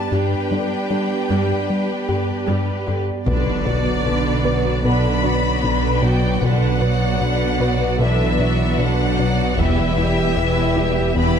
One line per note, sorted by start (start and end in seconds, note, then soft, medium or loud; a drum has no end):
0.00 0.11 B3 medium
0.00 0.11 D5 medium
0.00 0.11 A5 medium
0.10 0.19 G2 soft
0.10 0.35 G2 medium
0.10 0.48 G3 soft
0.10 0.36 G3 medium
0.10 3.24 G3 medium
0.10 3.23 B3 medium
0.10 3.03 D4 soft
0.10 3.02 G4 soft
0.10 3.23 G4 medium
0.10 3.02 B4 soft
0.10 3.23 D5 medium
0.10 2.88 G5 medium
0.51 0.59 G2 soft
0.51 0.59 D3 soft
0.51 0.75 G3 soft
0.51 0.75 D4 soft
0.90 0.98 G2 soft
0.90 0.99 D3 soft
0.90 1.14 G3 soft
0.90 1.14 D4 soft
1.30 1.38 G2 medium
1.30 1.53 G2 medium
1.30 1.66 G3 soft
1.30 1.54 G3 medium
1.70 1.93 G3 soft
2.08 2.16 G2 soft
2.08 2.32 G2 soft
2.08 2.16 D3 soft
2.08 2.32 G4 medium
2.47 2.56 G2 soft
2.47 2.71 G2 medium
2.47 2.84 G3 soft
2.47 2.71 G3 medium
2.87 2.95 G2 soft
2.87 3.11 G2 medium
2.87 2.95 D3 soft
2.87 3.11 G4 soft
3.26 3.96 B1 soft
3.26 6.38 B1 medium
3.26 3.96 B2 soft
3.26 3.50 B2 medium
3.26 3.63 D3 soft
3.26 6.38 D3 medium
3.26 4.81 D3 medium
3.26 3.56 F#3 soft
3.26 3.51 B3 medium
3.26 3.55 B3 soft
3.26 6.39 B3 medium
3.26 3.63 D4 soft
3.26 3.63 B4 soft
3.26 6.39 B4 medium
3.26 4.80 D5 medium
3.26 6.39 D5 medium
3.26 taiko medium
3.26 impact soft
3.65 3.90 B2 medium
3.65 4.06 F#3 soft
3.65 4.06 B3 soft
3.65 4.05 F#4 soft
3.65 3.90 B4 medium
3.65 4.05 D5 soft
4.04 4.74 B1 soft
4.04 4.74 B2 soft
4.04 4.29 B2 soft
4.04 4.45 D3 soft
4.04 4.45 D4 soft
4.04 4.45 B4 soft
4.44 4.69 B2 medium
4.44 4.84 F#3 soft
4.44 4.84 B3 soft
4.44 4.84 F#4 soft
4.44 4.69 B4 medium
4.44 4.84 D5 soft
4.83 5.53 B1 medium
4.83 5.53 B2 soft
4.83 5.08 B2 medium
4.83 5.21 D3 soft
4.83 5.13 F#3 soft
4.83 5.13 B3 soft
4.83 6.03 B3 medium
4.83 5.08 B3 medium
4.83 5.20 D4 soft
4.83 5.21 D4 soft
4.83 5.20 B4 soft
4.83 6.03 B5 medium
5.23 5.48 B2 soft
5.23 5.64 F#3 soft
5.23 5.63 B3 soft
5.23 5.47 D4 medium
5.23 5.63 F#4 soft
5.23 5.63 D5 soft
5.61 6.33 B1 medium
5.61 6.32 B2 soft
5.61 5.87 B2 medium
5.61 6.03 D3 soft
5.61 6.02 D4 soft
5.61 5.87 D4 soft
5.61 6.03 D4 soft
5.61 6.02 B4 soft
6.01 6.26 B2 medium
6.01 6.41 F#3 soft
6.01 6.41 F#3 medium
6.01 6.42 B3 soft
6.01 6.26 D4 medium
6.01 6.42 F#4 soft
6.01 6.42 D5 soft
6.01 6.42 G5 medium
6.40 7.11 B1 soft
6.40 9.60 B1 medium
6.40 7.11 B2 medium
6.40 6.66 B2 medium
6.40 6.78 D3 soft
6.40 9.53 F#3 medium
6.40 6.70 F#3 soft
6.40 8.00 F#3 medium
6.40 9.53 B3 medium
6.40 6.70 B3 soft
6.40 6.66 B3 medium
6.40 6.78 D4 soft
6.40 6.78 B4 soft
6.40 9.53 B4 medium
6.40 9.53 D5 medium
6.40 8.00 F#5 medium
6.40 taiko medium
6.80 7.05 B2 medium
6.80 7.20 F#3 soft
6.80 7.20 B3 soft
6.80 7.20 F#4 soft
6.80 7.05 B4 soft
6.80 7.20 D5 soft
7.20 7.90 B1 medium
7.20 7.90 B2 soft
7.20 7.44 B2 soft
7.20 7.60 D3 soft
7.20 7.60 D4 soft
7.20 7.60 B4 soft
7.59 7.84 B2 medium
7.59 8.00 F#3 soft
7.59 8.00 B3 soft
7.59 7.99 F#4 soft
7.59 7.85 B4 medium
7.59 7.99 D5 soft
7.99 8.69 B1 medium
7.99 8.69 B2 soft
7.99 8.23 B2 medium
7.99 8.36 D3 soft
7.99 8.77 E3 medium
7.99 8.29 F#3 soft
7.99 8.29 B3 soft
7.99 8.24 B3 medium
7.99 8.36 D4 soft
7.99 8.37 D4 soft
7.99 8.37 B4 soft
7.99 8.77 E5 medium
8.39 8.63 B2 medium
8.39 8.79 F#3 soft
8.39 8.79 B3 soft
8.39 8.64 D4 medium
8.39 8.79 F#4 soft
8.39 8.79 D5 soft
8.78 9.48 B1 medium
8.78 9.02 B2 medium
8.78 9.48 B2 medium
8.78 9.19 D3 soft
8.78 9.59 F#3 medium
8.78 9.03 D4 medium
8.78 9.18 D4 soft
8.78 9.19 D4 soft
8.78 9.19 B4 soft
8.78 9.58 F#5 medium
9.18 9.42 B2 medium
9.18 9.58 F#3 soft
9.18 9.58 B3 soft
9.18 9.43 D4 medium
9.18 9.58 F#4 soft
9.18 9.58 D5 soft
9.56 10.28 E1 soft
9.56 11.39 E1 medium
9.56 9.81 E2 medium
9.56 10.27 E2 medium
9.56 9.94 E3 soft
9.56 9.82 E3 medium
9.56 11.39 E3 medium
9.56 11.14 E3 medium
9.56 9.86 G3 soft
9.56 9.86 B3 medium
9.56 11.39 B3 medium
9.56 9.94 E4 soft
9.56 9.95 G4 soft
9.56 9.95 B4 soft
9.56 11.39 B4 medium
9.56 11.16 E5 medium
9.56 11.39 G5 medium
9.56 taiko medium
9.97 10.21 E2 medium
9.97 10.37 G3 soft
9.97 10.37 E4 soft
9.97 10.22 E4 medium
9.97 10.36 G4 soft
9.97 10.37 G4 soft
10.37 11.06 E1 medium
10.37 10.60 E2 soft
10.37 11.07 E2 medium
10.37 10.76 E3 soft
10.37 10.76 E4 soft
10.37 10.75 G4 soft
10.37 10.77 B4 soft
10.76 11.00 E2 medium
10.76 11.16 G3 soft
10.76 11.00 E4 medium
10.76 11.16 E4 soft
10.76 11.15 G4 soft
10.76 11.16 G4 soft
11.14 11.39 E1 medium
11.14 11.39 E2 medium
11.14 11.39 E3 medium
11.14 11.39 G3 medium
11.14 11.39 B3 medium
11.14 11.39 E4 medium
11.14 11.39 G4 medium
11.14 11.39 B4 soft
11.14 11.39 B5 medium